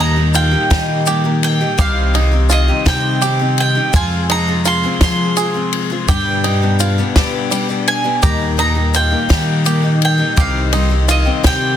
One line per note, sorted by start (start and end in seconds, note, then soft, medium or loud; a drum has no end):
0.00 0.54 D#2 loud
0.00 1.77 A#2 medium
0.00 3.90 D#3 medium
0.00 0.17 G3 medium
0.00 3.90 G3 medium
0.00 0.17 A#3 medium
0.00 0.16 D#4 medium
0.00 0.34 D#4 medium
0.00 3.90 D#4 medium
0.00 3.90 G4 medium
0.00 0.15 G4 medium
0.00 0.35 A#5 medium
0.16 0.53 A#3 soft
0.16 0.51 D#4 soft
0.16 0.50 G4 medium
0.34 1.05 F4 medium
0.34 1.43 G5 medium
0.34 ride medium
0.34 shaker loud
0.51 0.70 A#3 medium
0.51 0.70 D#4 soft
0.51 0.70 G4 medium
0.70 1.07 D#3 medium
0.70 1.61 D#3 loud
0.70 1.05 G3 medium
0.70 1.06 A#3 medium
0.70 1.06 D#4 medium
0.70 1.07 G4 medium
0.70 kick medium
0.70 snare loud
0.70 ride medium
0.70 shaker soft
1.06 1.25 G3 medium
1.06 1.24 A#3 medium
1.06 1.24 D#4 medium
1.06 1.77 G4 medium
1.06 1.23 G4 medium
1.06 ride medium
1.06 shaker medium
1.24 1.61 A#3 medium
1.24 1.60 D#4 medium
1.24 1.59 G4 medium
1.43 1.80 G5 medium
1.43 ride medium
1.61 1.78 A#3 medium
1.61 1.78 D#4 medium
1.61 1.78 G4 medium
1.77 2.69 C2 loud
1.77 3.91 C3 medium
1.77 2.14 C3 medium
1.77 2.13 G3 medium
1.77 2.13 C4 medium
1.77 2.14 D#4 loud
1.77 2.14 G4 loud
1.77 2.47 F5 medium
1.77 kick loud
1.77 ride medium
1.77 shaker medium
2.14 2.32 G3 medium
2.14 2.33 C4 medium
2.14 2.49 D#4 medium
2.14 2.32 D#4 medium
2.14 2.30 G4 medium
2.14 ride medium
2.14 shaker soft
2.32 2.69 C4 soft
2.32 2.68 D#4 medium
2.32 2.67 G4 medium
2.49 3.20 F4 medium
2.49 2.88 D#5 loud
2.49 ride medium
2.49 shaker medium
2.68 2.85 C4 soft
2.68 2.86 D#4 medium
2.68 2.86 G4 medium
2.85 3.22 C3 medium
2.85 3.77 C3 loud
2.85 3.20 G3 medium
2.85 3.21 C4 medium
2.85 3.22 D#4 loud
2.85 3.22 G4 medium
2.85 3.59 G5 loud
2.85 kick medium
2.85 snare loud
2.85 ride medium
2.85 shaker soft
3.22 3.40 G3 medium
3.22 3.40 C4 medium
3.22 3.40 D#4 medium
3.22 3.92 G4 medium
3.22 3.38 G4 medium
3.22 ride medium
3.22 shaker loud
3.39 3.76 C4 soft
3.39 3.76 D#4 medium
3.39 3.74 G4 medium
3.58 3.93 G5 medium
3.58 ride medium
3.75 3.93 C4 medium
3.75 3.94 D#4 medium
3.75 3.94 G4 medium
3.93 4.84 F2 loud
3.93 6.06 C3 medium
3.93 4.28 F3 medium
3.93 6.07 F3 medium
3.93 6.07 G#3 medium
3.93 4.29 C4 medium
3.93 6.06 F4 medium
3.93 4.29 F4 loud
3.93 4.30 F4 medium
3.93 6.07 G#4 medium
3.93 4.30 G#4 loud
3.93 4.31 G#5 loud
3.93 kick loud
3.93 ride medium
3.93 shaker loud
4.30 4.48 F3 medium
4.30 4.48 C4 medium
4.30 4.65 D#4 medium
4.30 4.47 F4 medium
4.30 4.46 G#4 medium
4.30 4.67 A#5 loud
4.30 ride medium
4.48 4.84 C4 soft
4.48 4.84 F4 medium
4.48 4.82 G#4 medium
4.65 5.36 F4 medium
4.65 5.02 C6 loud
4.65 ride medium
4.65 shaker loud
4.83 5.00 C4 medium
4.83 5.01 F4 medium
4.83 5.01 G#4 medium
5.01 5.35 F3 medium
5.01 5.91 F3 loud
5.01 5.36 C4 medium
5.01 5.36 F4 loud
5.01 5.37 G#4 loud
5.01 6.09 C6 loud
5.01 kick medium
5.01 snare loud
5.01 ride medium
5.01 shaker soft
5.36 5.55 F3 medium
5.36 5.55 C4 medium
5.36 5.54 F4 medium
5.36 6.07 G#4 medium
5.36 5.53 G#4 medium
5.36 ride medium
5.36 shaker loud
5.54 5.91 C4 soft
5.54 5.91 F4 medium
5.54 5.89 G#4 medium
5.73 ride medium
5.90 6.09 C4 medium
5.90 6.09 F4 medium
5.90 6.08 G#4 medium
6.08 6.44 G2 medium
6.08 6.99 G2 loud
6.08 8.21 B2 medium
6.08 6.45 D3 medium
6.08 8.21 G3 medium
6.08 6.42 G3 medium
6.08 6.43 B3 medium
6.08 6.44 D4 medium
6.08 6.44 G4 loud
6.08 6.45 G4 loud
6.08 8.21 B4 medium
6.08 8.21 D5 medium
6.08 7.12 G5 medium
6.08 kick loud
6.08 ride medium
6.08 shaker loud
6.44 6.62 G3 medium
6.44 6.62 B3 medium
6.44 6.62 D4 medium
6.44 6.79 D#4 medium
6.44 6.61 G4 medium
6.44 ride medium
6.44 shaker soft
6.62 6.99 G3 soft
6.62 6.99 B3 soft
6.62 6.98 D4 medium
6.62 6.97 G4 medium
6.80 7.50 F4 medium
6.80 ride medium
6.80 shaker loud
6.98 7.16 G3 medium
6.98 7.15 B3 medium
6.98 7.16 D4 medium
6.98 7.16 G4 medium
6.98 shaker soft
7.16 7.52 G2 loud
7.16 7.52 D3 loud
7.16 8.06 G3 loud
7.16 7.49 G3 loud
7.16 7.50 B3 loud
7.16 7.51 D4 medium
7.16 7.51 G4 loud
7.16 kick medium
7.16 snare loud
7.16 ride medium
7.50 7.69 G3 medium
7.50 8.22 G3 medium
7.50 7.69 B3 medium
7.50 7.68 D4 medium
7.50 7.68 G4 medium
7.50 ride medium
7.50 shaker loud
7.69 8.05 G3 soft
7.69 8.04 B3 medium
7.69 8.04 D4 medium
7.69 8.03 G4 medium
7.69 shaker soft
7.87 8.23 G#5 medium
7.87 ride medium
8.04 8.21 G3 medium
8.04 8.23 B3 soft
8.04 8.23 D4 medium
8.04 8.23 G4 medium
8.22 9.13 D#2 medium
8.22 10.36 A#2 medium
8.22 8.58 D#3 medium
8.22 11.77 D#3 medium
8.22 8.56 G3 medium
8.22 11.77 G3 medium
8.22 8.57 A#3 medium
8.22 8.58 D#4 medium
8.22 10.36 D#4 medium
8.22 8.58 G4 medium
8.22 11.77 A#4 medium
8.22 8.58 A#5 medium
8.22 kick loud
8.22 ride medium
8.22 shaker medium
8.57 8.76 G3 medium
8.57 8.76 A#3 medium
8.57 8.94 D#4 medium
8.57 8.75 D#4 medium
8.57 8.74 G4 medium
8.57 8.96 A#5 medium
8.57 ride medium
8.57 shaker soft
8.75 9.11 A#3 soft
8.75 9.11 D#4 soft
8.75 9.09 G4 medium
8.94 9.65 F4 medium
8.94 10.04 G5 medium
8.94 ride medium
8.94 shaker loud
9.10 9.29 A#3 soft
9.10 9.29 D#4 medium
9.10 9.29 G4 medium
9.29 9.65 D#3 medium
9.29 10.20 D#3 loud
9.29 9.63 G3 medium
9.29 9.64 A#3 medium
9.29 9.64 D#4 medium
9.29 9.66 G4 loud
9.29 kick medium
9.29 snare loud
9.29 ride medium
9.29 shaker soft
9.64 9.83 G3 medium
9.64 9.84 A#3 medium
9.64 9.83 D#4 medium
9.64 10.36 G4 medium
9.64 9.81 G4 medium
9.64 ride medium
9.64 shaker medium
9.83 10.19 A#3 soft
9.83 10.18 D#4 medium
9.83 10.17 G4 medium
10.02 10.40 G5 medium
10.02 ride medium
10.18 10.37 A#3 soft
10.18 10.37 D#4 medium
10.18 10.37 G4 medium
10.36 11.27 C2 loud
10.36 10.73 C3 medium
10.36 11.77 C3 medium
10.36 10.71 G3 medium
10.36 10.72 C4 medium
10.36 11.77 D#4 medium
10.36 10.73 D#4 medium
10.36 10.73 G4 loud
10.36 10.74 G4 loud
10.36 11.10 F5 medium
10.36 kick loud
10.36 ride medium
10.36 shaker loud
10.73 10.91 G3 medium
10.73 10.91 C4 medium
10.73 11.08 D#4 medium
10.73 10.90 D#4 medium
10.73 10.89 G4 medium
10.73 ride medium
10.73 shaker soft
10.90 11.26 C4 soft
10.90 11.25 D#4 medium
10.90 11.24 G4 medium
11.08 11.77 F4 medium
11.08 11.47 D#5 medium
11.08 ride medium
11.08 shaker loud
11.25 11.43 C4 medium
11.25 11.43 D#4 medium
11.25 11.44 G4 medium
11.43 11.77 C3 medium
11.43 11.77 C3 loud
11.43 11.77 G3 medium
11.43 11.77 C4 medium
11.43 11.77 D#4 medium
11.43 11.77 G4 medium
11.43 11.77 G5 loud
11.43 kick medium
11.43 snare loud
11.43 ride medium
11.43 shaker soft